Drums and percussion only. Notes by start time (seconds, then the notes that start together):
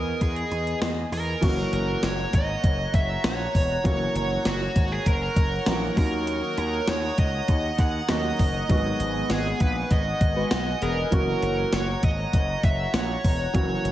0.21 kick, closed hi-hat
0.36 closed hi-hat
0.52 closed hi-hat
0.67 closed hi-hat
0.82 snare, closed hi-hat
1.12 open hi-hat
1.42 kick, closed hi-hat, crash
1.73 closed hi-hat
2.03 snare, closed hi-hat, tambourine
2.33 kick, closed hi-hat
2.64 kick, closed hi-hat
2.94 kick, closed hi-hat
3.24 snare, closed hi-hat, tambourine
3.55 kick, open hi-hat
3.85 kick, closed hi-hat
4.16 closed hi-hat
4.45 snare, closed hi-hat, tambourine
4.76 kick, closed hi-hat
5.06 kick, closed hi-hat
5.36 kick, closed hi-hat
5.66 snare, closed hi-hat, tambourine
5.97 kick, open hi-hat
6.27 closed hi-hat
6.58 closed hi-hat
6.88 snare, closed hi-hat, tambourine
7.18 kick, closed hi-hat
7.48 kick, closed hi-hat
7.78 kick, closed hi-hat
8.09 snare, closed hi-hat, tambourine
8.39 kick, open hi-hat
8.69 kick, closed hi-hat
9.00 closed hi-hat
9.30 snare, closed hi-hat, tambourine
9.60 kick, closed hi-hat
9.91 kick, closed hi-hat
10.21 kick, closed hi-hat
10.51 snare, closed hi-hat, tambourine
10.82 closed hi-hat
11.12 kick, closed hi-hat
11.42 closed hi-hat
11.73 snare, closed hi-hat, tambourine
12.03 kick, closed hi-hat
12.33 kick, closed hi-hat
12.63 kick, closed hi-hat
12.94 snare, closed hi-hat, tambourine
13.24 kick, open hi-hat
13.55 kick, closed hi-hat
13.85 closed hi-hat